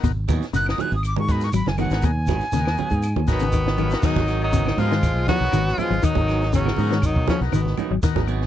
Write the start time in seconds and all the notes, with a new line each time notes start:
Already playing: B3 D#4 F#4 A#4
0.03 G#1 B2, kick, closed hi-hat, shekere
0.28 D#2 F#3 B3 D#4 G#4, kick, closed hi-hat, high conga, claves, shekere
0.42 snare, closed hi-hat, shekere
0.53 F#1 C#3 B3 D#4 F#4 A#4 F#6, closed hi-hat, shekere
0.66 D#6, snare, claves
0.78 F#3 B3 D#4 G#4 F#6, closed hi-hat, high conga, low conga, shekere
0.92 G#1 D#6, shekere
1.03 D6, closed hi-hat, claves, shekere
1.16 G#2 D#3 C#6, high conga
1.28 F#3 B3 D#4 F#4 G#4 A#4 B5, muted clean electric guitar stroke, kick, closed hi-hat, shekere
1.41 C#6, snare, shekere
1.53 G#1 F#3 B5, closed hi-hat, claves, shekere
1.66 F#1 G#5, snare, high conga
1.78 D#3 F#3 B3 D#4 G#4 F#5, closed hi-hat, high conga, low conga, claves, shekere
1.90 G#1 B3 D#4 F#4 G#4 A#4, snare, closed hi-hat, shekere
2.02 D#2 B2 G#5, kick, closed hi-hat, shekere
2.27 G#1 F#3 B3 D#4 G#4, kick, snare, closed hi-hat, high conga, claves, shekere
2.41 snare, closed hi-hat, shekere
2.52 D#2 C#3 B3 D#4 F#4 A#4, snare, closed hi-hat, shekere
2.65 snare, claves
2.77 F#3 B3 G#4, closed hi-hat, high conga, low conga, shekere
2.90 G#2 B3 D#4 G#4, kick, closed hi-hat, shekere
3.03 closed hi-hat, claves, shekere
3.16 D#2 D#3, high conga
3.27 G#1 B2 D#3 F#3 B3 D#4 F#4 G#4 A#4, kick, snare, closed hi-hat, shekere
3.32 B3
3.39 C#3, shekere
3.52 D#3 C#5, kick, closed hi-hat, claves, shekere
3.67 snare, high conga
3.77 D#3 F#3 B3 D#4 G#4 F5, closed hi-hat, low conga, claves, shekere
3.90 B3 D#4 F#4 A#4, snare, closed hi-hat, shekere
4.02 D#3 F#3 B3 D#4 F#4 G#4 A#4, muted fingered electric bass stroke, kick, crash, shekere
4.16 G#1, kick, snare, high conga
4.27 F#3 D#4 G#4, muted clean electric guitar stroke, snare, closed hi-hat, claves, shekere
4.41 D#3 F#3 D#4
4.53 C#3 F#3 B3 D#4 G#4, kick, closed hi-hat, high conga, shekere
4.66 snare, high conga, claves
4.77 G#2 F3 F#3 G#3 B3 D#4 F4 F#4 G#4 A#4, snare, open hi-hat, low conga, shekere
4.91 D#3, snare, closed hi-hat
5.03 G#1, kick, snare, closed hi-hat, claves, shekere
5.15 B1
5.27 F3 F#3 B3 D#4 F#4 G#4, kick, snare, closed hi-hat, high conga, shekere
5.40 B1 B3 D#4 F#4 A#4, snare
5.52 G#1 D#3, closed hi-hat, high conga, claves, shekere
5.67 snare, closed hi-hat
5.78 F3 F#3 G#3 B3 F4 G#4, muted clean electric guitar stroke, closed hi-hat, low conga, claves, shekere
5.90 G#1 F#3, closed hi-hat, low conga
6.02 D#3 F#3 B3 D#4 F#4 A#4, kick, closed hi-hat, shekere
6.15 G#1, kick, closed hi-hat, high conga
6.28 F#3 B3 D#4 G#4, snare, closed hi-hat, claves, shekere
6.42 snare, closed hi-hat
6.53 C#3 F#3 B3 C#4 D#4 G#4, kick, closed hi-hat, high conga, shekere
6.65 snare, high conga, claves
6.77 G#2 F#3 B3 D#4 F#4 G#4 A#4, open hi-hat, high conga, low conga, shekere
6.91 D#3, snare, closed hi-hat
7.02 G#1 D#3 F#3 D#4, kick, closed hi-hat, high conga, claves, shekere
7.16 B1, kick
7.27 C#3 F3 F#3 B3 C#4 D#4 G#4, kick, snare, closed hi-hat, high conga, shekere
7.41 B1 B3 D#4 F#4 A#4, snare, closed hi-hat
7.52 G#1 B2 D#3 B3, closed hi-hat, high conga, claves, shekere
7.66 snare, high conga
7.77 F#3 B3 D#4 G#4, muted fingered electric bass stroke, closed hi-hat, low conga, claves, shekere
7.91 G#1 F#3
8.03 D#3 B3 D#4 F#4 A#4, kick, snare, closed hi-hat, high conga, shekere
8.16 G#1, kick, snare, high conga
8.27 F#3 B3 D#4 G#4, closed hi-hat, claves, shekere
8.42 snare